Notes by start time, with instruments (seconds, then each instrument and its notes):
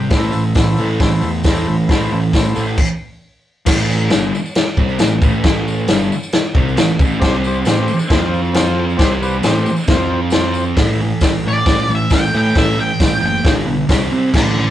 Already playing: transistor combo organ G5
0.10 picked electric bass A1, distorted electric guitar A2 E3 A3, kick, snare, open hi-hat
0.14 transistor combo organ E4 A4 C5
0.23 tambourine
0.32 picked electric bass A1, distorted electric guitar A2 E3, tambourine
0.55 picked electric bass A1, distorted electric guitar A2 E3, transistor combo organ E4, kick, snare, open hi-hat, tambourine
0.60 transistor combo organ A4 C5
0.67 tambourine
0.77 picked electric bass A1, distorted electric guitar A2 E3 A3, tambourine
1.00 picked electric bass A1, distorted electric guitar A2 E3, transistor combo organ E4 A4 C5, kick, snare, open hi-hat, tambourine
1.21 picked electric bass E2, distorted electric guitar A2 E3, tambourine
1.44 picked electric bass E2, distorted electric guitar A2 E3 A3, transistor combo organ E4 A4, kick, snare, open hi-hat, tambourine
1.48 transistor combo organ C5
1.56 tambourine
1.67 picked electric bass A1, distorted electric guitar A2 E3, tambourine
1.88 picked electric bass A1, distorted electric guitar A2 E3 A3, transistor combo organ E4 A4 C5, kick, snare, open hi-hat, tambourine
2.00 tambourine
2.11 picked electric bass A1, distorted electric guitar A2 E3
2.23 tambourine
2.33 picked electric bass A1, distorted electric guitar A2 E3, transistor combo organ E4 A4 C5, kick, snare, open hi-hat, tambourine
2.55 picked electric bass A1, distorted electric guitar A2 E3 A3, tambourine
2.68 tambourine
2.78 kick, crash
3.66 picked electric bass A1, distorted electric guitar A2 E3 A3, kick, snare, crash
3.80 tambourine
3.91 tambourine
4.01 tambourine
4.10 picked electric bass G1, distorted electric guitar G2 D3 G3, snare, tambourine, crash
4.35 tambourine
4.46 tambourine
4.55 snare, tambourine, crash
4.66 tambourine
4.77 picked electric bass C2, distorted electric guitar C3 G3 C4, kick, tambourine
4.89 tambourine
4.99 picked electric bass A1, distorted electric guitar A2 E3, snare, tambourine, crash
5.11 tambourine
5.22 picked electric bass A1, distorted electric guitar A2 E3 A3, kick, tambourine
5.33 tambourine
5.44 picked electric bass A1, distorted electric guitar A2 E3 A3, kick, snare, crash
5.57 tambourine
5.68 tambourine
5.79 tambourine
5.87 picked electric bass G1, distorted electric guitar G2 D3 G3, snare, tambourine, crash
6.12 tambourine
6.23 tambourine
6.33 snare, crash
6.46 tambourine
6.55 picked electric bass C2, distorted electric guitar C3 G3 C4, kick, tambourine
6.68 tambourine
6.77 picked electric bass A1, distorted electric guitar A2 E3, snare, tambourine, crash
6.91 tambourine
6.99 picked electric bass A1, distorted electric guitar A2 E3 A3, kick, tambourine
7.12 tambourine
7.20 picked electric bass C2, distorted electric guitar C3 G3 C4, transistor combo organ C4 G4 C5, kick, snare, crash
7.24 tambourine
7.34 tambourine
7.44 transistor combo organ C4 G4 C5, tambourine
7.55 tambourine
7.65 picked electric bass A1, distorted electric guitar A2 E3 A3, transistor combo organ C4, snare, tambourine, crash
7.69 transistor combo organ G4 C5
7.88 tambourine
7.99 tambourine
8.08 picked electric bass F2, distorted electric guitar F3 C4, transistor combo organ C4 F4 C5, kick, snare, tambourine, crash
8.12 distorted electric guitar F4
8.22 tambourine
8.33 tambourine
8.45 tambourine
8.53 transistor combo organ C4 F4 C5, snare, tambourine, crash
8.66 tambourine
8.90 tambourine
8.97 picked electric bass C2, distorted electric guitar C3 G3 C4, transistor combo organ C4 G4 C5, kick, snare, crash
9.01 tambourine
9.12 tambourine
9.22 transistor combo organ C4 G4 B4, tambourine
9.33 tambourine
9.42 picked electric bass A1, distorted electric guitar A2 E3 A3, transistor combo organ C4 G4, snare, tambourine, crash
9.47 transistor combo organ C5
9.66 tambourine
9.76 tambourine
9.87 picked electric bass F2, distorted electric guitar F3 C4 F4, transistor combo organ C4 F4 C5, kick, snare, tambourine, crash
9.99 tambourine
10.30 transistor combo organ C4, snare, tambourine, crash
10.34 transistor combo organ F4 C5
10.43 tambourine
10.54 tambourine
10.65 tambourine
10.76 picked electric bass A1, distorted electric guitar A2 E3 A3, kick, snare, open hi-hat
11.01 distorted electric guitar A2 E3
11.21 picked electric bass A1, distorted electric guitar A2 E3, kick, snare, open hi-hat, tambourine
11.43 picked electric bass A1, distorted electric guitar A2 E3
11.48 lead electric guitar D5
11.66 picked electric bass A1, distorted electric guitar A2 E3, kick, snare, open hi-hat
11.88 picked electric bass A1, distorted electric guitar A2 E3
11.95 lead electric guitar E5
12.10 picked electric bass A1, distorted electric guitar A2 E3, lead electric guitar G5, kick, snare, open hi-hat, tambourine
12.33 distorted electric guitar A2 E3 A3, picked electric bass A2
12.38 lead electric guitar G5
12.55 picked electric bass A1, distorted electric guitar A2 E3 A3, lead electric guitar E5, kick, snare, open hi-hat
12.77 distorted electric guitar A2 E3, lead electric guitar G5
13.00 picked electric bass A1, distorted electric guitar A2 E3, kick, snare, open hi-hat, tambourine
13.21 picked electric bass F#1, distorted electric guitar A2 E3
13.26 lead electric guitar G5
13.44 picked electric bass G1, distorted electric guitar G2 D3 G3, kick, snare, open hi-hat
13.66 picked electric bass B1, distorted electric guitar G2 D3
13.89 picked electric bass C2, distorted electric guitar C3 G3 C4, kick, snare, open hi-hat, tambourine
14.11 picked electric bass C3, distorted electric guitar C3 G3 C4
14.34 picked electric bass A1, distorted electric guitar A2 E3 A3, lead electric guitar A4 D5, kick, snare, crash
14.58 distorted electric guitar A2 E3, lead electric guitar A4 D5